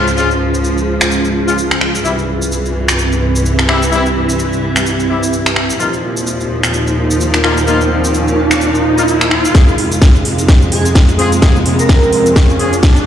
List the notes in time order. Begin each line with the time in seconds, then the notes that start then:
Already playing: C#2 G#2 F3 C#4 F4 G#4 F5
0.08 cabasa
0.17 G#3 C#4 F4, cabasa
0.31 cabasa
0.54 cabasa
0.64 cabasa
0.78 cabasa
1.01 finger snap, cabasa
1.11 cabasa
1.25 cabasa
1.48 G#3 C#4 F4, cabasa
1.58 cabasa
1.71 finger snap, cabasa
1.81 finger snap
1.95 cabasa
2.05 C2 G2 E3 G3 C4 E4, cabasa
2.09 E4
2.18 cabasa
2.32 G4
2.42 cabasa
2.52 cabasa
2.65 cabasa
2.79 E5
2.88 finger snap, cabasa
2.99 cabasa
3.12 cabasa
3.36 cabasa
3.46 cabasa
3.59 finger snap, cabasa
3.69 G3 C4 E4, finger snap
3.83 cabasa
3.92 G3 C4 E4, cabasa
4.06 cabasa
4.29 cabasa
4.39 cabasa
4.53 cabasa
4.76 finger snap, cabasa
4.86 cabasa
5.00 cabasa
5.09 G3 C4 E4
5.23 cabasa
5.33 cabasa
5.46 finger snap, cabasa
5.56 finger snap
5.70 cabasa
5.80 D#2 A#2 F3 A#3 D#4 F4, riser, cabasa
5.93 cabasa
6.01 A#4
6.05 F4
6.17 F5, cabasa
6.27 cabasa
6.40 cabasa
6.63 finger snap, cabasa
6.74 cabasa
6.87 cabasa
7.11 cabasa
7.21 cabasa
7.34 finger snap, cabasa
7.44 A#3 D#4 F4, finger snap
7.58 cabasa
7.67 A#3 D#4 F4, cabasa
7.81 cabasa
8.04 cabasa
8.14 cabasa
8.28 cabasa
8.51 finger snap, cabasa
8.61 cabasa
8.75 cabasa
8.98 A#3 D#4 F4, cabasa
9.08 cabasa
9.21 finger snap, cabasa
9.31 finger snap
9.45 cabasa
9.55 F2 C3 G#3 C4 F4 G#4, kick, snare, closed hi-hat, riser, cabasa
9.68 cabasa
9.78 open hi-hat
9.87 G#4
9.92 closed hi-hat, cabasa
10.02 kick, snare, closed hi-hat, cabasa
10.15 cabasa
10.25 open hi-hat
10.38 closed hi-hat, cabasa
10.48 kick, snare, closed hi-hat, cabasa
10.62 cabasa
10.72 G#4, open hi-hat
10.85 closed hi-hat, cabasa
10.95 kick, snare, closed hi-hat, cabasa
11.09 closed hi-hat, cabasa
11.19 C4 F4 G#4, open hi-hat
11.32 closed hi-hat, cabasa
11.42 C4 F4 G#4, kick, snare, closed hi-hat, cabasa
11.56 cabasa
11.66 open hi-hat
11.79 A#4, closed hi-hat, cabasa
11.89 kick, snare, closed hi-hat, cabasa
12.03 cabasa
12.13 open hi-hat
12.26 closed hi-hat, cabasa
12.36 kick, snare, closed hi-hat, cabasa
12.50 cabasa
12.59 C4 F4 G#4, open hi-hat
12.73 closed hi-hat, cabasa
12.83 kick, snare, closed hi-hat, cabasa
12.96 closed hi-hat, cabasa